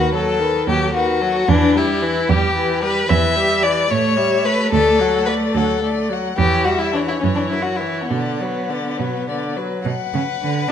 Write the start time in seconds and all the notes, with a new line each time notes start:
Already playing: D#2 D#3 F#4 B4
0.13 F#3 A4
0.40 D#3 B4
0.67 D#2 F#3 G4 A4
0.95 D#3 F#4 B4
1.21 F#3 A4
1.48 E2 E3 D4 B4
1.75 G3 E4 G4
2.02 E3 B4
2.29 E2 G3 G4
2.55 E3 B4
2.82 G3 G4 B4
3.07 E2 E3 B4 E5
3.36 G3 G4
3.63 E3 B4 D5
3.91 A2 A3 C#5
4.17 G3 E5
4.45 A3 B4 C#5
4.72 D2 A3 A4 D5
5.00 F#3 F#5
5.26 A3 B4 D5
5.54 D2 F#3 A4 F#5
5.82 A3 D5
6.10 F#3 F#5
6.37 E2 E3 G4 C#5
6.65 G3 F#4 E5
6.79 E4
6.93 E3 D4 C#5
7.08 E4
7.20 F#2 E3 C#4 C#5
7.35 D4
7.49 F#3 E4
7.53 A#4
7.63 F#4
7.77 E4
7.81 E3 C#5
8.06 B3
8.11 B2 D3 D5
8.41 F#3 B4
8.70 D3 D5
8.98 B2 F#3 B4
9.28 D3 D5
9.57 F#3 B4
9.84 B2 B4 F#5
10.14 C#3
10.42 D3
10.69 D4